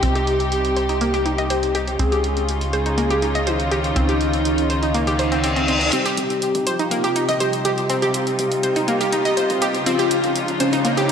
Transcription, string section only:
Already playing: C3 C4 D#4 G4
1.99 C#3 C#4 D#4 F4
5.93 C3 C4 D#4 G4
7.90 F4
9.86 C#3 G#3

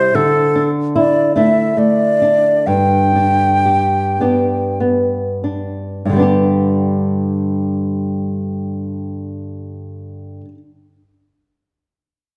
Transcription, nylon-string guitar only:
Already playing: C3 G3 E4 G4
0.15 D3
0.55 D4
0.96 E4
1.36 A3 D4 E4
1.77 A3
2.22 D4
2.67 G2
3.15 D4
3.66 G4
4.20 B3 D4 G4
4.80 B3
5.44 D4
6.05 G2
6.10 D3 G3
6.16 B3 D4
6.22 G4

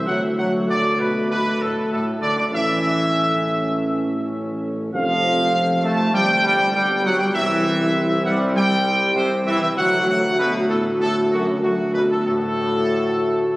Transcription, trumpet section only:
0.06 F#5
0.38 F#5
0.69 D5
0.99 B4
1.30 B4
1.61 A4
1.91 A4
2.21 D5
2.38 D5
2.53 E5
4.95 F5
5.85 A5
6.15 G5
6.45 G5
6.75 G5
7.05 F#5
7.19 G5
7.33 E5
8.24 F#5
8.55 G5
9.16 C5
9.47 E5
9.60 E5
9.76 F#5
10.08 F#5
10.39 B4
10.68 A4
11.00 A4
11.31 F#4
11.62 F#4
11.93 B4
12.10 A4
12.24 A4

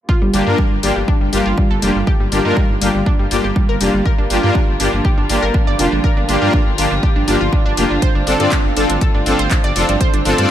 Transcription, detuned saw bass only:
0.22 G1
0.34 G1
0.47 G2
0.71 G1
0.83 G1
0.96 G1
1.21 G1
1.33 G1
1.46 G1
1.71 G1
1.82 F1
1.95 G1
2.20 G1
2.32 G1
2.45 G2
2.70 G1
2.82 G1
2.95 G1
3.19 G1
3.31 G1
3.44 G1
3.69 G1
3.81 F1
3.94 G1
4.19 G1
4.30 G1
4.43 G2
4.68 G1
4.80 G1
4.93 G1
5.18 G1
5.29 G1
5.43 G1
5.67 G1
5.79 F1
5.92 G1
6.17 G1
6.29 G1
6.42 G2
6.66 G1
6.78 G1
6.91 G1
7.16 G1
7.28 G1
7.41 G1
7.66 G1
7.77 F1
7.90 G1
8.15 G1
8.27 G1
8.40 G2
8.65 G1
8.77 G1
8.90 G1
9.14 G1
9.26 G1
9.39 G1
9.64 G1
9.76 F1
9.89 G1
10.14 G1
10.25 G1
10.38 G2

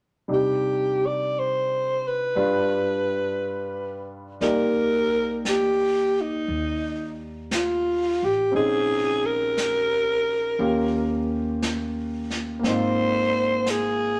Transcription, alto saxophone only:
0.34 G4
1.07 D5
1.39 C5
2.08 B4
4.43 A#4
5.49 G4
6.21 D#4
7.54 F4
8.24 G4
8.56 G#4
9.26 A#4
12.68 C5
13.70 G#4

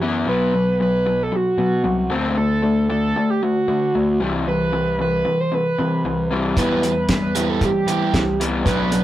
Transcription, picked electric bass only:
Already playing: F#2
0.27 B1
1.58 B2
1.84 C2
2.11 D2
3.68 D3
3.96 D2
4.22 C2
5.79 C3
6.04 C2
6.57 E2
7.86 E3
8.14 C2
8.66 B1

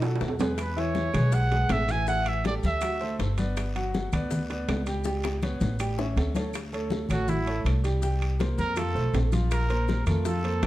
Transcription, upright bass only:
Already playing: B2
0.21 E2
1.14 B1
1.70 A1
2.63 D2
3.19 G1
4.12 D2
4.68 C#2
5.61 A1
6.16 D2
7.10 A1
7.65 C2
8.58 F2
8.95 B1
9.14 A#1
10.06 F2
10.63 A1

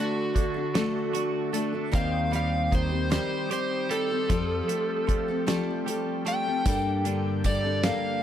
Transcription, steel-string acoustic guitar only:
Already playing: A3 D4 F#4 A4
0.34 A3 D4 F#4 A4
0.54 D4 F#4 A4
0.74 D3 A3 D4 F#4 A4
1.13 A3 D4 F#4 A4
1.53 A3 D4 F#4 A4
1.73 D4 F#4 A4
1.91 D#3 G3 C4 G4 C5
2.31 G3 C4 G4 C5
2.71 G3 C4 G4 C5
2.89 C4 G4 C5
3.10 D#3 G3 C4 G4 C5
3.49 G3 C4 G4 C5
3.89 G3 C4 G4 C5
4.10 C4 G4 C5
4.30 F3 G3 C4 G4 A4
4.69 G3 C4 G4 A4
5.07 G3 C4 G4 A4
5.28 C4 G4 A4
5.46 F3 G3 C4 G4 A4
5.87 G3 C4 G4 A4
6.25 G3 C4 G4 A4
6.46 C4 G4 A4
6.65 G3 A#3 D4 G4 A4
7.05 A#3 D4 G4 A4
7.45 A#3 D4 G4 A4
7.64 D4 G4 A4
7.84 G3 A#3 D4 G4 A4

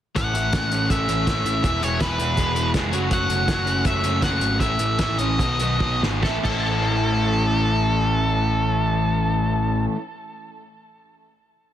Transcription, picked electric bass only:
0.17 A1
0.36 A1
0.53 A1
0.90 A1
1.09 A1
1.27 A1
1.45 A1
1.64 E1
1.83 E1
2.01 E1
2.19 E1
2.38 E1
2.74 F1
2.94 F#1
3.11 F#1
3.29 F#1
3.48 F#1
3.85 F#1
4.04 F#1
4.22 F#1
4.42 G#1
4.60 A1
4.79 A1
4.99 A1
5.19 A1
5.39 B1
5.80 B1
6.02 G#1
6.23 A1
6.45 A1

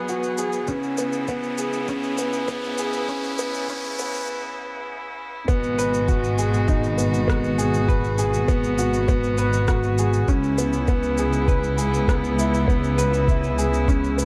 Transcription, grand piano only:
Already playing: B3 F#4 G#4 B4
0.09 F#4
0.38 G#4
0.68 C#4
0.98 B3
1.29 B3
1.58 G#4
1.89 C#4
2.18 B3
2.48 B3
2.79 G#4
3.09 C#4
3.39 B3
3.70 C#4
3.99 B3
5.48 B3
5.79 B4
6.08 F#4
6.38 G#4
6.68 D#4
6.98 B3
7.28 B3
7.58 G#4
7.88 B4
8.19 G#4
8.48 B3
8.79 F#4
9.08 B3
9.38 B4
9.69 F#4
9.99 G#4
10.28 C#4
10.58 B3
10.88 B3
11.19 G#4
11.48 B4
11.78 G#4
12.09 B3
12.38 E4
12.68 B3
12.98 B4
13.28 E4
13.58 G#4
13.88 C#4
14.18 B3

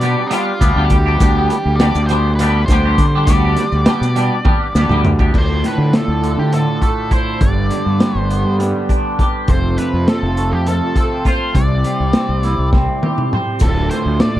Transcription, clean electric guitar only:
0.02 G3 B3 D4 G4
0.30 G3 B3 D4 G4
0.61 G3 B3 D4 G4
0.76 G3 B3 D4 G4
1.06 G3 B3 D4 G4
1.21 G3 B3 D4 G4
1.36 G3 B3 D4 G4
1.81 G3 B3 D4 G4
2.10 G3 B3 D4 G4
2.41 G3 B3 D4 G4
2.71 G3 B3 D4 G4
2.85 G3 B3 D4 G4
3.15 G3 B3 D4 G4
3.28 G3 B3 D4 G4
3.44 G3 B3 D4 G4
3.86 G3 B3 D4 G4
4.16 G3 B3 D4 G4
4.45 G3 B3 D4 G4
4.76 G3 B3 D4 G4
4.91 G3 B3 D4 G4
5.20 G3 B3 D4 G4
5.33 D2
5.64 A2
5.92 A2
6.23 D3
6.53 A2
6.82 A3
7.11 E4
7.41 G2
7.71 D3
8.00 G3
8.31 B3
8.59 G3
8.90 D4
9.21 G4
9.49 F2
9.79 C3
10.08 F3
10.38 A3
10.68 F3
10.98 C4
11.26 F4
11.54 C3
11.84 G3
12.14 C4
12.44 E4
12.74 C4
13.04 G4
13.34 C5
13.64 D2
13.94 A2
14.23 A2

